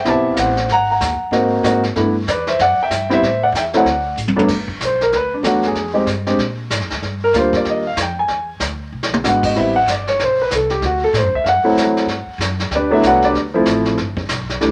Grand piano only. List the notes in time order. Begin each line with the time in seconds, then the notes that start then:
0.05 B3 C4 E4 G4 A5
0.10 E5
0.34 F5
0.40 C5 F#5
0.72 F#5 A#5
0.90 F#5 A#5
1.32 A#3 C4 D#4 F#4
1.64 A#3 C4 D#4 F#4
1.96 A3 B3 D4 E4
2.29 B4 D5
2.48 C5 E5
2.61 D5 F#5
2.83 E5 G5
3.10 G3 B3 C4 E4 E5
3.14 C5
3.43 D5 F#5
3.57 E5 G5
3.74 F#3 A3 C4 E4 F#5
3.78 D5
4.36 G2 F#3 A3 B3 D4
4.85 C5
5.02 A#4
5.16 B4
5.34 D4
5.43 F#3 A3 B3 D4 F#4
5.67 G#4
5.94 G#3 C4 D#4 G4
6.27 G#3 C4 D4 G4
7.24 A#4
7.35 G3 A#3 D4 F4
7.39 C5
7.56 D5
7.69 D#5
7.87 F5
8.02 G5
8.19 G#5
9.24 G#3 B3 D4 F#4
9.29 F#5
9.45 D#5
9.55 G3 B3 C4 E4 E5
9.76 F#5
9.91 D5
10.09 C#5
10.24 C5
10.42 B4
10.55 A4
10.71 G4
10.86 F#4
11.04 A4
11.18 C5
11.35 E5
11.44 F5
11.49 F#5
11.64 F#3 A3 C4 E4
12.75 D4 G4 B4 D5
12.91 F#3 A3 B3 D4 E4 E5
13.07 F#4 B4 D5 F#5
13.25 D4 G4 B4 D5
13.54 F3 A3 C4 E4
14.61 E3 G3 A3 D4